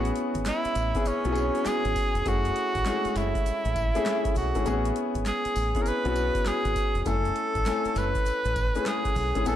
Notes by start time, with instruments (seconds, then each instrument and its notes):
Already playing: fingered electric bass A1, grand piano B3 C#4 E4 G#4, tenor saxophone F#4
0.05 closed hi-hat, shaker
0.16 closed hi-hat, shaker
0.35 fingered electric bass G#1, kick, closed hi-hat, shaker
0.45 tenor saxophone E4, snare, clap, closed hi-hat, tambourine, shaker
0.64 muted fingered electric bass stroke, closed hi-hat, shaker
0.75 fingered electric bass A1, closed hi-hat, tambourine, shaker
0.95 grand piano B3 C#4 E4 G#4, kick, closed hi-hat, shaker
1.05 tenor saxophone C#4, muted fingered electric bass stroke, closed hi-hat, tambourine, shaker
1.24 fingered electric bass B1, grand piano B3 C#4 E4 F#4, closed hi-hat, shaker
1.32 grand piano G#4, closed hi-hat, tambourine
1.55 closed hi-hat, shaker
1.65 tenor saxophone G#4, muted fingered electric bass stroke, snare, clap, closed hi-hat, tambourine, shaker
1.85 fingered electric bass G#1, closed hi-hat, shaker
1.96 kick, open hi-hat, tambourine, shaker
2.15 fingered electric bass F1, closed hi-hat, shaker
2.26 fingered electric bass F#1, grand piano A3 C#4 E4 G#4, tenor saxophone F#4, kick, closed hi-hat, tambourine, shaker
2.45 closed hi-hat, shaker
2.56 closed hi-hat, shaker
2.75 fingered electric bass A1, kick, closed hi-hat, shaker
2.85 grand piano G#3 C#4 E4 G#4, snare, clap, closed hi-hat, tambourine, shaker
2.92 grand piano A3
3.05 muted fingered electric bass stroke, closed hi-hat, shaker
3.16 fingered electric bass F#1, tenor saxophone E4, snare, closed hi-hat, tambourine, shaker
3.35 kick, closed hi-hat, shaker
3.46 muted fingered electric bass stroke, closed hi-hat, tambourine, shaker
3.65 fingered electric bass A1, closed hi-hat, shaker
3.76 kick, closed hi-hat, tambourine
3.95 grand piano A3 C#4 E4 G#4, closed hi-hat, shaker
4.06 snare, clap, closed hi-hat, tambourine, shaker
4.25 kick, closed hi-hat, shaker
4.35 fingered electric bass B1, tenor saxophone F#4, open hi-hat, tambourine, shaker
4.55 fingered electric bass G#1, grand piano A3 C#4 E4 G#4, closed hi-hat, shaker
4.66 fingered electric bass A1, grand piano B3 C#4 E4 G#4, closed hi-hat, tambourine, shaker
4.85 closed hi-hat, shaker
4.96 closed hi-hat, shaker
5.15 fingered electric bass G#1, kick, closed hi-hat, shaker
5.26 tenor saxophone G#4, snare, clap, closed hi-hat, tambourine, shaker
5.45 muted fingered electric bass stroke, closed hi-hat, shaker
5.56 fingered electric bass A1, open hi-hat, tambourine, shaker
5.75 grand piano B3 C#4 E4 G#4, kick, closed hi-hat, shaker
5.82 tenor saxophone A#4, closed hi-hat, tambourine
5.86 tenor saxophone B4, muted fingered electric bass stroke, shaker
6.05 fingered electric bass B1, grand piano B3 C#4 E4 F#4, closed hi-hat, shaker
6.16 closed hi-hat, tambourine
6.35 kick, closed hi-hat, shaker
6.45 tenor saxophone G#4, muted fingered electric bass stroke, snare, clap, closed hi-hat, tambourine, shaker
6.65 fingered electric bass G#1, closed hi-hat, shaker
6.76 kick, closed hi-hat, tambourine, shaker
6.95 fingered electric bass F1, closed hi-hat, shaker
7.02 fingered electric bass F#1, grand piano A3, tenor saxophone G#4, kick, closed hi-hat, tambourine, shaker
7.06 grand piano C#4 E4 G#5, tenor saxophone A4
7.25 closed hi-hat, shaker
7.36 closed hi-hat, shaker
7.55 fingered electric bass A1, kick, closed hi-hat, shaker
7.66 grand piano A3 C#4 E4 G#5, snare, clap, closed hi-hat, tambourine, shaker
7.85 muted fingered electric bass stroke, closed hi-hat, shaker
7.95 fingered electric bass F#1, tenor saxophone B4, snare, closed hi-hat, tambourine, shaker
8.15 kick, closed hi-hat, shaker
8.26 muted fingered electric bass stroke, closed hi-hat, tambourine, shaker
8.45 fingered electric bass A1, closed hi-hat, shaker
8.56 kick, closed hi-hat, tambourine
8.75 grand piano A3 C#4 E4 G#4, closed hi-hat, shaker
8.86 tenor saxophone G#4, snare, clap, closed hi-hat, tambourine, shaker
9.05 kick, closed hi-hat, shaker
9.15 fingered electric bass B1, open hi-hat, tambourine, shaker
9.35 fingered electric bass G#1, grand piano A3 C#4 E4 G#4, closed hi-hat, shaker
9.45 fingered electric bass A1, grand piano B3 C#4 E4 G#5, tenor saxophone A4, closed hi-hat, tambourine, shaker